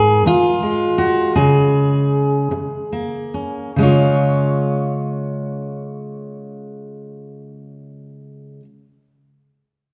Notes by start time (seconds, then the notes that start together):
Already playing: G#2 G#4 A#4
0.26 F4, muted steel-string acoustic guitar stroke
0.63 G#3
0.98 F#4
1.36 C#3 G#4
2.51 muted steel-string acoustic guitar stroke
2.93 A#3
3.34 C#4
3.76 C#3 G#3
3.81 C#4 F4 C#5